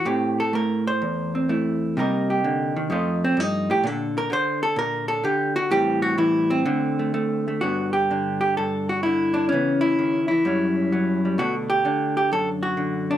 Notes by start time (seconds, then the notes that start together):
0.05 A2 A3 C4 G4
0.40 A4
0.53 A3 A#4
0.87 C5
1.02 E2
1.35 C4
1.49 A3 E4
1.97 C3 G3 A#3 D#4 A#4
2.30 G4
2.44 D3
2.77 D#3
2.90 F2 F3 A3 D#4 F4
3.24 C4
3.37 G2 D#4
3.70 A2 G4
3.84 A#2 D3 D4 A4
4.18 A#4
4.30 D3 C5
4.63 A4
4.76 A#2 A#4
5.08 A4
5.24 D3 G4
5.56 F#4
5.71 A2 E3 G3 C4 G4
6.02 F#4
6.18 E3 E4
6.50 C4
6.66 D3 A3
6.99 A3
7.14 A3
7.48 A3
7.61 G2 D3 B3 D4 F#4
7.93 G4
8.11 D3 D4
8.41 G4
8.57 G2 A4
8.89 F#4
9.03 D3 E4
9.34 D4
9.49 C#3 C#4
9.53 E3 B3
9.81 E4
9.99 D#3
10.28 E3 E4
10.45 F#2 F#3 G3 C#4
10.92 F#3 C#4
11.25 G3
11.38 B2 D3 A3 D4 F#4
11.70 G4
11.85 D3 D4
12.17 G4
12.32 F#2 A4
12.63 F#4
12.77 D3
13.11 D4